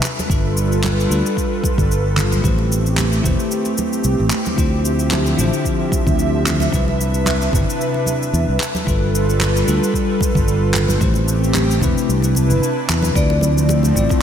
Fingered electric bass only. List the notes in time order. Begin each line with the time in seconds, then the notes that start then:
0.30 G1
1.10 D2
1.78 G1
2.44 A1
3.24 E1
4.05 C2
4.20 A1
4.58 D2
5.39 A1
6.07 D2
6.73 C2
7.53 G1
8.34 E2
8.48 C2
8.87 G1
9.68 D2
10.36 G1
11.01 A1
11.81 E1
12.09 C2
12.50 G1
12.89 E2
13.15 D2
13.96 A1